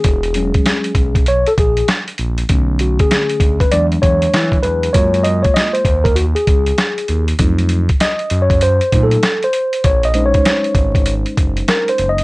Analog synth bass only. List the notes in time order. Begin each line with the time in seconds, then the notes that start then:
0.05 E1
0.95 B1
1.58 A#1
2.19 A#1
2.49 B1
3.40 D2
3.73 E2
4.03 E2
4.33 E3
4.64 E2
4.95 F#2
5.85 D#2
6.47 C#2
7.09 D#2
7.39 F2
8.31 F#2
8.93 A#2
9.84 A#1
10.75 G#1
11.37 F#1
11.99 F#1